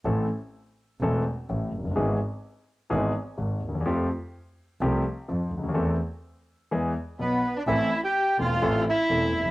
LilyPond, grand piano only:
\new Staff \with { instrumentName = "Grand piano" } { \clef bass \time 4/4 \key a \minor \tempo 4 = 126 <a,, a, e a c' a'>8 r4. <e,, e, e a c' a'>8 r8 <a,, a,>8 r32 f,,32 fis,,32 g,,32 | <gis,, gis, e gis b gis'>8 r4. <gis,, gis, e gis b gis'>8 r8 <gis,, gis,>8 r32 d,32 dis,32 e,32 | <f, f a c' g'>8 r4. <c, c f a c' g'>8 r8 <f, f>8 r32 cis,32 d,32 dis,32 | <e, e a c' a'>8 r4. <e, e gis b gis'>8 r8 <b,, b,>8 r8 |
<a,, a, e a c' a'>8 r4 <e,, e, e a c' a'>8 <a,, a, e a c' a'>8 r8 <e,, e, e a c' a'>8 r32 f,,32 fis,,32 r32 | }